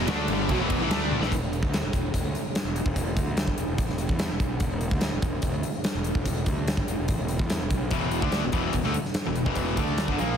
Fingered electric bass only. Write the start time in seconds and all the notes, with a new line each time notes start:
0.07 D2
0.28 G1
0.49 B1
0.59 E1
0.80 A1
0.89 D2
1.20 A1
1.32 E1
1.63 D2
1.82 E1
1.94 E1
2.15 E1
2.23 D2
2.64 E1
2.86 E1
3.17 D2
3.47 G1
3.58 E1
3.68 E1
3.78 A1
3.89 E1
4.09 E2
4.30 E1
4.40 B1
4.60 E1
4.91 D2
5.11 E1
5.22 E1
5.43 E1
5.52 D2
5.94 E1
6.15 E1
6.46 D2
6.77 G1
6.87 E1
6.99 E1
7.09 A1
7.18 E1
7.39 E2
7.61 E1
7.70 B1
7.91 E1
8.23 D2
8.44 E1
8.53 E1
8.73 E1
8.86 D2
9.27 E1
9.46 E1
9.77 D2
10.07 G1
10.20 A#1